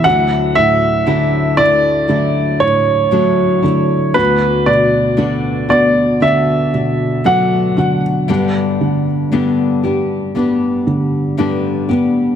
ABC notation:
X:1
M:4/4
L:1/16
Q:1/4=58
K:D
V:1 name="Grand piano"
f2 e4 d4 c6 | B2 d4 d2 e4 f3 z | z16 |]
V:2 name="Nylon-string guitar"
[D,F,A,DE]4 [D,F,A,DE]2 [A,DE]2 [F,A,DE]4 [D,F,A,DE]2 [A,DE]2 | [D,B,DF]4 [D,B,DF]2 [B,DF]2 [D,B,DF]4 [D,B,DF]2 [B,DF]2 | [G,,D,G,B,DG]4 [G,,D,G,B,DG]2 [G,B,DG]2 [G,B,DG]4 [G,,D,G,B,DG]2 [G,B,DG]2 |]
V:3 name="Felt piano" clef=bass
D,,2 A,,2 D,2 A,2 D,2 A,,2 F,2 D,2 | D,,2 B,,2 D,2 B,2 D,2 B,,2 F,2 D,2 | G,,2 D,2 B,2 G2 B,2 D,2 D2 B,2 |]